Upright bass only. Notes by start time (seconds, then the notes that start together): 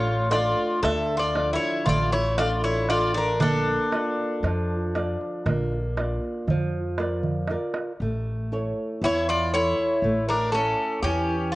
Already playing: A1
0.83 D2
1.87 A1
3.40 A#1
4.43 F2
5.46 A#1
6.47 F2
8.00 A1
9.01 E2
10.02 A1
11.03 E2